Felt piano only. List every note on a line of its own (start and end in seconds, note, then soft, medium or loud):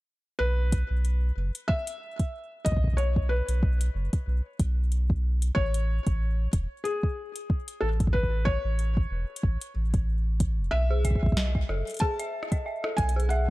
0.39 1.32 B4 loud
1.68 2.68 E5 loud
2.65 2.99 D#5 loud
2.97 3.31 C#5 loud
3.29 4.55 B4 medium
5.55 6.48 C#5 loud
6.84 7.77 G#4 medium
7.81 7.88 A4 medium
8.13 8.47 B4 loud
8.45 9.71 C#5 loud
10.71 11.64 E5 loud
12.00 13.00 A5 loud
12.97 13.31 G#5 loud
13.29 13.50 F#5 medium